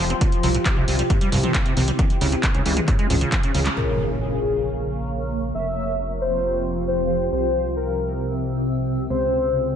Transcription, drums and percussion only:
0.10 closed hi-hat soft
0.21 kick loud
0.21 closed hi-hat medium
0.32 closed hi-hat soft
0.43 open hi-hat loud
0.55 closed hi-hat soft
0.66 kick loud
0.66 clap loud
0.66 closed hi-hat medium
0.88 open hi-hat medium
0.99 closed hi-hat medium
1.10 kick loud
1.10 closed hi-hat medium
1.21 closed hi-hat soft
1.32 open hi-hat loud
1.43 closed hi-hat soft
1.43 mid tom medium
1.54 kick loud
1.54 clap loud
1.54 closed hi-hat medium
1.66 closed hi-hat soft
1.77 open hi-hat medium
1.77 mid tom medium
1.88 closed hi-hat medium
1.99 kick loud
1.99 closed hi-hat medium
1.99 mid tom medium
2.10 closed hi-hat soft
2.21 open hi-hat loud
2.32 closed hi-hat medium
2.43 kick loud
2.43 clap loud
2.43 closed hi-hat medium
2.55 closed hi-hat soft
2.66 open hi-hat medium
2.77 closed hi-hat medium
2.77 mid tom medium
2.88 kick loud
2.88 clap soft
2.88 closed hi-hat medium
2.99 closed hi-hat soft
3.10 open hi-hat loud
3.10 mid tom medium
3.21 closed hi-hat medium
3.32 kick loud
3.32 clap loud
3.32 closed hi-hat medium
3.43 closed hi-hat soft
3.54 open hi-hat medium
3.54 mid tom medium
3.66 clap medium
3.66 closed hi-hat medium

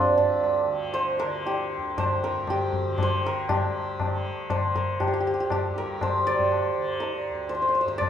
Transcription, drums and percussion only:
0.18 tabla ge soft
0.43 tabla na medium
0.95 tabla tin medium
1.20 tabla na medium
1.46 tabla tin medium
1.98 tabla na medium
1.98 tabla ge medium
2.23 tabla te medium
2.47 tabla na medium
2.47 tabla ge medium
2.73 tabla ge medium
2.98 tabla na medium
2.98 tabla ge medium
3.24 tabla te medium
3.49 tabla na loud
3.49 tabla ge medium
4.00 tabla na medium
4.00 tabla ge medium
4.50 tabla na medium
4.50 tabla ge medium
4.75 tabla ge medium
5.00 tabla na medium
5.00 tabla ge medium
5.50 tabla na medium
5.50 tabla ge medium
5.76 tabla te medium
6.01 tabla na medium
6.01 tabla ge medium
6.27 tabla te medium
6.39 tabla ge medium
6.52 tabla na medium
7.02 tabla tin medium
7.51 tabla tin medium
8.01 tabla na medium
8.01 tabla ge medium

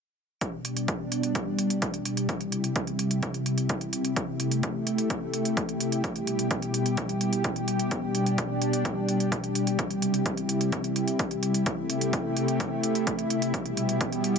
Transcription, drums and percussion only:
0.41 kick loud
0.41 closed hi-hat medium
0.65 closed hi-hat medium
0.77 closed hi-hat soft
0.88 kick loud
0.88 closed hi-hat medium
1.12 closed hi-hat medium
1.23 closed hi-hat soft
1.35 kick loud
1.35 closed hi-hat medium
1.59 closed hi-hat medium
1.70 closed hi-hat medium
1.82 kick loud
1.82 closed hi-hat medium
1.94 closed hi-hat soft
2.05 closed hi-hat medium
2.17 closed hi-hat medium
2.29 kick loud
2.29 closed hi-hat medium
2.41 closed hi-hat soft
2.52 closed hi-hat medium
2.64 closed hi-hat soft
2.76 kick loud
2.76 closed hi-hat medium
2.87 closed hi-hat soft
2.99 closed hi-hat medium
3.11 closed hi-hat soft
3.23 kick loud
3.23 closed hi-hat medium
3.34 closed hi-hat soft
3.46 closed hi-hat medium
3.58 closed hi-hat soft
3.69 kick loud
3.69 closed hi-hat medium
3.81 closed hi-hat soft
3.93 closed hi-hat medium
4.05 closed hi-hat soft
4.16 kick loud
4.16 closed hi-hat medium
4.40 closed hi-hat medium
4.52 closed hi-hat soft
4.63 kick loud
4.63 closed hi-hat medium
4.87 closed hi-hat medium
4.98 closed hi-hat soft
5.10 kick loud
5.10 closed hi-hat medium
5.34 closed hi-hat medium
5.45 closed hi-hat soft
5.57 kick loud
5.57 closed hi-hat medium
5.69 closed hi-hat soft
5.80 closed hi-hat medium
5.92 closed hi-hat soft
6.04 kick loud
6.04 closed hi-hat medium
6.16 closed hi-hat soft
6.27 closed hi-hat medium
6.39 closed hi-hat soft
6.51 kick loud
6.51 closed hi-hat medium
6.62 closed hi-hat soft
6.74 closed hi-hat medium
6.86 closed hi-hat soft
6.97 kick loud
6.97 closed hi-hat medium
7.09 closed hi-hat soft
7.21 closed hi-hat medium
7.33 closed hi-hat soft
7.44 kick loud
7.44 closed hi-hat medium
7.56 closed hi-hat soft
7.68 closed hi-hat medium
7.79 closed hi-hat soft
7.91 kick loud
7.91 closed hi-hat medium
8.15 closed hi-hat medium
8.26 closed hi-hat soft
8.38 kick loud
8.38 closed hi-hat medium
8.62 closed hi-hat medium
8.73 closed hi-hat soft
8.85 kick loud
8.85 closed hi-hat medium
9.09 closed hi-hat medium
9.20 closed hi-hat soft
9.32 kick loud
9.32 closed hi-hat medium
9.44 closed hi-hat soft
9.55 closed hi-hat medium
9.67 closed hi-hat soft
9.79 kick loud
9.79 closed hi-hat medium
9.91 closed hi-hat soft
10.02 closed hi-hat medium
10.14 closed hi-hat soft
10.26 kick loud
10.26 closed hi-hat medium
10.37 closed hi-hat soft
10.49 closed hi-hat medium
10.61 closed hi-hat soft
10.72 kick loud
10.72 closed hi-hat medium
10.84 closed hi-hat soft
10.96 closed hi-hat medium
11.08 closed hi-hat soft
11.19 kick loud
11.19 closed hi-hat medium
11.31 closed hi-hat soft
11.43 closed hi-hat medium
11.54 closed hi-hat soft
11.66 kick loud
11.66 closed hi-hat medium
11.90 closed hi-hat medium
12.01 closed hi-hat soft
12.13 kick loud
12.13 closed hi-hat medium
12.37 closed hi-hat medium
12.48 closed hi-hat medium
12.60 kick loud
12.60 closed hi-hat medium
12.83 closed hi-hat medium
12.95 closed hi-hat medium
13.07 kick loud
13.07 closed hi-hat medium
13.19 closed hi-hat soft
13.30 closed hi-hat medium
13.42 closed hi-hat medium
13.54 kick loud
13.54 closed hi-hat medium
13.66 closed hi-hat soft
13.77 closed hi-hat medium
13.89 closed hi-hat soft
14.01 kick loud
14.01 closed hi-hat medium
14.12 closed hi-hat soft
14.24 closed hi-hat medium

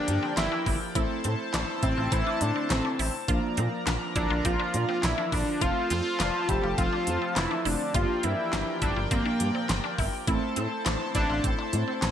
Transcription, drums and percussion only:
0.08 closed hi-hat medium
0.37 snare loud
0.37 clap loud
0.37 closed hi-hat medium
0.66 kick medium
0.66 open hi-hat medium
0.95 kick loud
0.95 closed hi-hat medium
1.24 closed hi-hat medium
1.54 snare loud
1.54 clap loud
1.54 closed hi-hat medium
1.83 kick loud
1.83 closed hi-hat medium
2.12 kick loud
2.12 closed hi-hat medium
2.41 closed hi-hat medium
2.70 snare loud
2.70 clap medium
2.70 closed hi-hat medium
2.99 open hi-hat medium
3.28 kick loud
3.28 closed hi-hat medium
3.57 closed hi-hat medium
3.87 snare loud
3.87 clap loud
3.87 closed hi-hat medium
4.16 kick loud
4.16 closed hi-hat medium
4.45 kick loud
4.45 closed hi-hat loud
4.74 closed hi-hat medium
5.03 snare loud
5.03 clap medium
5.03 closed hi-hat medium
5.32 kick medium
5.32 open hi-hat medium
5.61 kick loud
5.61 closed hi-hat medium
5.90 closed hi-hat medium
6.20 snare loud
6.20 clap loud
6.20 closed hi-hat medium
6.49 kick loud
6.49 closed hi-hat medium
6.78 kick loud
6.78 closed hi-hat medium
7.07 closed hi-hat medium
7.36 snare loud
7.36 clap medium
7.36 closed hi-hat medium
7.65 open hi-hat medium
7.94 kick loud
7.94 closed hi-hat medium
8.23 closed hi-hat medium
8.53 snare loud
8.53 clap loud
8.53 closed hi-hat medium
8.82 kick loud
8.82 closed hi-hat medium
9.11 kick loud
9.11 closed hi-hat medium
9.40 closed hi-hat medium
9.69 snare loud
9.69 clap loud
9.69 closed hi-hat medium
9.98 kick medium
9.98 open hi-hat medium
10.27 kick loud
10.27 closed hi-hat medium
10.56 closed hi-hat medium
10.86 snare loud
10.86 clap loud
10.86 closed hi-hat medium
11.15 kick loud
11.15 closed hi-hat medium
11.44 kick loud
11.44 closed hi-hat medium
11.73 closed hi-hat medium
12.02 snare loud
12.02 clap medium
12.02 closed hi-hat medium

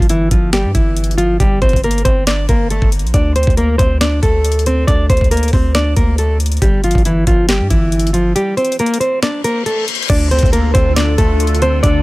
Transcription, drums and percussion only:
0.02 closed hi-hat soft
0.09 closed hi-hat medium
0.31 kick loud
0.31 closed hi-hat medium
0.53 snare loud
0.53 closed hi-hat medium
0.75 kick loud
0.75 closed hi-hat medium
0.97 closed hi-hat medium
1.04 closed hi-hat medium
1.11 closed hi-hat soft
1.18 closed hi-hat medium
1.40 kick loud
1.40 closed hi-hat medium
1.62 kick medium
1.62 closed hi-hat soft
1.69 closed hi-hat soft
1.73 kick medium
1.73 closed hi-hat soft
1.84 closed hi-hat medium
1.91 closed hi-hat medium
1.98 closed hi-hat medium
2.05 kick loud
2.05 closed hi-hat medium
2.27 snare loud
2.27 closed hi-hat medium
2.49 kick loud
2.49 closed hi-hat medium
2.70 closed hi-hat medium
2.82 kick loud
2.92 closed hi-hat medium
2.99 closed hi-hat medium
3.07 closed hi-hat soft
3.14 kick loud
3.14 closed hi-hat medium
3.36 closed hi-hat medium
3.43 closed hi-hat soft
3.47 kick loud
3.47 closed hi-hat soft
3.57 closed hi-hat medium
3.79 kick loud
3.79 closed hi-hat medium
4.01 snare loud
4.01 closed hi-hat medium
4.23 kick loud
4.23 closed hi-hat medium
4.45 closed hi-hat medium
4.52 closed hi-hat medium
4.59 closed hi-hat soft
4.66 closed hi-hat medium
4.88 kick loud
4.88 closed hi-hat medium
5.10 kick loud
5.10 closed hi-hat medium
5.17 closed hi-hat medium
5.21 kick medium
5.21 closed hi-hat soft
5.31 closed hi-hat medium
5.37 closed hi-hat medium
5.43 closed hi-hat medium
5.48 closed hi-hat soft
5.53 kick loud
5.53 open hi-hat medium
5.75 snare loud
5.75 closed hi-hat medium
5.97 kick loud
5.97 closed hi-hat medium
6.18 closed hi-hat medium
6.40 closed hi-hat medium
6.46 closed hi-hat medium
6.52 closed hi-hat medium
6.57 closed hi-hat soft
6.62 kick loud
6.62 closed hi-hat medium
6.84 closed hi-hat medium
6.91 closed hi-hat medium
6.95 kick loud
6.95 closed hi-hat soft
7.05 closed hi-hat medium
7.27 kick loud
7.27 closed hi-hat medium
7.49 snare loud
7.49 closed hi-hat medium
7.70 kick loud
7.70 closed hi-hat medium
7.92 closed hi-hat medium
8.00 closed hi-hat medium
8.07 closed hi-hat soft
8.14 closed hi-hat medium
8.36 closed hi-hat medium
8.57 closed hi-hat soft
8.65 closed hi-hat soft
8.72 closed hi-hat medium
8.79 closed hi-hat medium
8.86 closed hi-hat medium
8.94 closed hi-hat medium
9.01 closed hi-hat medium
9.23 snare loud
9.23 closed hi-hat medium
9.44 closed hi-hat medium
9.66 closed hi-hat medium
9.88 closed hi-hat medium
9.95 closed hi-hat medium
10.02 closed hi-hat soft
10.10 kick loud
10.10 closed hi-hat medium
10.10 crash loud
10.31 closed hi-hat medium
10.39 closed hi-hat medium
10.43 kick loud
10.43 closed hi-hat soft
10.53 closed hi-hat medium
10.75 kick loud
10.75 closed hi-hat medium
10.96 snare loud
10.96 closed hi-hat medium
11.18 kick loud
11.18 closed hi-hat medium
11.40 closed hi-hat medium
11.47 closed hi-hat medium
11.55 closed hi-hat soft
11.62 closed hi-hat medium
11.83 kick loud
11.83 closed hi-hat medium

